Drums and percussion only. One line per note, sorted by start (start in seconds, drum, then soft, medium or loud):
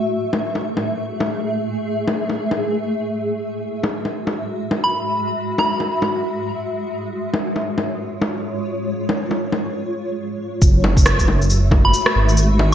0.33 low bongo medium
0.55 low bongo soft
0.77 low bongo soft
1.20 low bongo medium
2.08 low bongo medium
2.29 low bongo soft
2.51 low bongo soft
3.83 low bongo medium
4.05 low bongo soft
4.27 low bongo soft
4.71 low bongo medium
5.58 low bongo medium
5.80 low bongo soft
6.02 low bongo soft
7.34 low bongo medium
7.56 low bongo soft
7.78 low bongo soft
8.21 low bongo medium
9.09 low bongo medium
9.31 low bongo soft
9.52 low bongo medium
10.62 kick loud
10.62 shaker medium
10.84 low bongo medium
10.97 kick loud
10.97 shaker medium
11.06 cross-stick loud
11.06 low bongo soft
11.06 shaker medium
11.19 kick medium
11.19 shaker medium
11.28 low bongo medium
11.42 shaker soft
11.50 shaker medium
11.71 kick loud
11.71 low bongo medium
11.94 shaker medium
12.06 cross-stick loud
12.29 shaker soft
12.37 shaker medium
12.59 low bongo medium